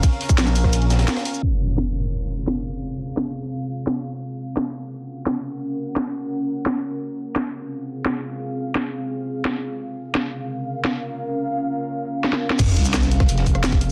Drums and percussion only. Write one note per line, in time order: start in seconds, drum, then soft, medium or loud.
0.03 kick loud
0.03 closed hi-hat medium
0.03 closed hi-hat loud
0.03 ride medium
0.03 shaker medium
0.12 closed hi-hat soft
0.21 closed hi-hat medium
0.29 kick loud
0.29 shaker medium
0.38 snare loud
0.38 closed hi-hat loud
0.38 ride medium
0.38 shaker medium
0.47 snare soft
0.47 shaker soft
0.55 closed hi-hat medium
0.55 open hi-hat medium
0.55 shaker soft
0.64 kick medium
0.64 cross-stick soft
0.64 snare medium
0.73 closed hi-hat loud
0.73 closed hi-hat medium
0.73 ride medium
0.73 shaker medium
0.82 closed hi-hat soft
0.90 snare loud
0.90 closed hi-hat medium
0.90 shaker soft
0.99 snare loud
0.99 closed hi-hat medium
0.99 closed hi-hat soft
1.08 snare loud
1.08 closed hi-hat loud
1.08 closed hi-hat medium
1.08 ride medium
1.08 shaker medium
1.17 cross-stick medium
1.17 snare loud
1.17 closed hi-hat soft
1.17 closed hi-hat medium
1.25 closed hi-hat medium
1.25 open hi-hat medium
1.34 shaker soft
1.43 crash medium
1.78 snare loud
2.47 snare loud
3.17 snare loud
3.87 snare loud
4.57 snare loud
5.26 snare loud
5.96 snare loud
6.66 snare loud
7.36 snare loud
8.06 snare loud
8.75 snare loud
9.45 snare loud
10.15 snare loud
10.85 snare loud
12.24 snare medium
12.33 snare medium
12.50 snare medium
12.59 kick loud
12.59 closed hi-hat medium
12.59 closed hi-hat loud
12.59 crash loud
12.59 shaker medium
12.77 closed hi-hat medium
12.77 open hi-hat medium
12.85 shaker medium
12.94 snare loud
12.94 closed hi-hat medium
12.94 closed hi-hat loud
12.94 shaker soft
13.03 snare medium
13.03 shaker soft
13.11 closed hi-hat medium
13.20 kick loud
13.20 cross-stick soft
13.20 snare soft
13.29 closed hi-hat loud
13.29 closed hi-hat medium
13.29 shaker soft
13.37 snare medium
13.37 closed hi-hat soft
13.46 kick medium
13.46 closed hi-hat medium
13.46 shaker soft
13.55 cross-stick soft
13.55 closed hi-hat soft
13.64 snare loud
13.64 closed hi-hat loud
13.64 closed hi-hat medium
13.64 shaker soft
13.72 kick loud
13.72 closed hi-hat soft
13.81 closed hi-hat medium